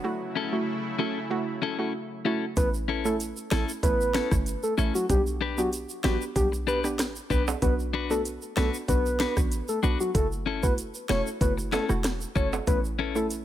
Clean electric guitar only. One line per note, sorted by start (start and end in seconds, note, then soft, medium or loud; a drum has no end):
0.35 0.55 C#4 medium
0.35 0.55 E4 medium
0.35 0.55 A4 loud
0.98 1.18 C#4 medium
0.98 1.18 E4 medium
0.98 1.18 A4 loud
1.62 1.78 C#4 medium
1.62 1.78 E4 medium
1.62 1.77 A4 loud
1.78 1.93 C#4 medium
1.78 1.92 E4 medium
1.78 1.92 A4 medium
2.25 2.44 C#4 medium
2.25 2.45 E4 loud
2.25 2.45 A4 loud
2.88 3.07 C#4 medium
2.88 3.08 E4 loud
2.88 3.08 A4 medium
3.51 3.71 C#4 medium
3.51 3.71 E4 medium
3.51 3.71 A4 medium
4.14 4.34 C#4 medium
4.14 4.34 E4 medium
4.14 4.34 A4 medium
4.78 4.97 C#4 medium
4.78 4.94 E4 medium
4.78 4.93 A4 loud
4.94 muted clean electric guitar stroke soft
5.41 5.60 D4 medium
5.41 5.60 G4 medium
5.41 5.61 B4 loud
6.04 6.23 D4 medium
6.04 6.23 G4 medium
6.04 6.24 B4 loud
6.52 muted clean electric guitar stroke soft
6.67 6.86 D4 loud
6.67 6.87 G4 medium
6.67 6.87 B4 loud
7.30 7.49 D4 medium
7.30 7.47 G4 medium
7.30 7.46 B4 loud
7.47 muted clean electric guitar stroke medium
7.93 8.13 D4 loud
7.93 8.13 F#4 medium
7.93 8.13 B4 loud
8.56 8.76 D4 medium
8.56 8.76 F#4 loud
8.56 8.76 B4 loud
9.20 9.39 D4 medium
9.20 9.39 F#4 medium
9.20 9.40 B4 medium
9.83 10.02 D4 medium
9.83 9.99 F#4 medium
9.83 9.98 B4 medium
10.00 muted clean electric guitar stroke medium
10.46 10.65 C#4 medium
10.46 10.66 E4 medium
10.46 10.66 A4 loud
11.09 11.28 C#4 medium
11.09 11.29 E4 medium
11.09 11.29 A4 loud
11.57 muted clean electric guitar stroke soft
11.72 11.92 C#4 medium
11.72 11.92 E4 medium
11.72 11.92 A4 loud
12.35 12.55 C#4 medium
12.35 12.55 E4 medium
12.35 12.55 A4 loud
12.99 13.18 C#4 loud
12.99 13.18 E4 medium
12.99 13.18 A4 loud